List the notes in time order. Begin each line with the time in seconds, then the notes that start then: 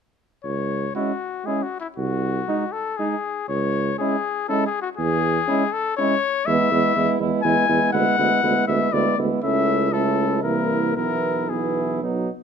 0.44 C#2 C#5
0.95 G#3 C#4 E4 F#4
1.46 G#3 C#4 E4 G#4
1.63 F#4
1.80 E4
1.96 C2 F#4
2.48 G#3 D#4
2.72 A4
2.97 G#3 D#4 G#4
3.48 C#2 C#5
3.98 G#3 C#4 E4 G#4
4.48 G#3 C#4 E4 A4
4.66 G#4
4.82 F#4
4.97 E2 G#4
5.48 G#3 C#4 E4
5.72 A4
5.97 G#3 C#4 E4 C#5
6.46 E2 G#3 B3 E4 E5
6.71 E2 G#3 B3 E4
6.96 E2 G#3 B3 E4
7.20 E2 G#3 B3 E4
7.43 E2 G#3 B3 E4 G#5
7.68 E2 G#3 B3 E4
7.93 D2 G#3 B3 E4 F#5
8.18 D2 G#3 B3 E4
8.43 D2 G#3 B3 E4
8.67 D2 G#3 B3 E4 E5
8.91 D2 G#3 B3 E4 D5
9.18 D2 G#3 B3 E4
9.43 C#2 A3 C#4 E4 E5
9.92 A3 C#4 E4 A4
10.43 C2 E3 A#3 E4 A#4
10.96 B1 E3 B3 E4 A#4
11.49 E3 B3 E4 G#4
12.02 F#3 B3 D#4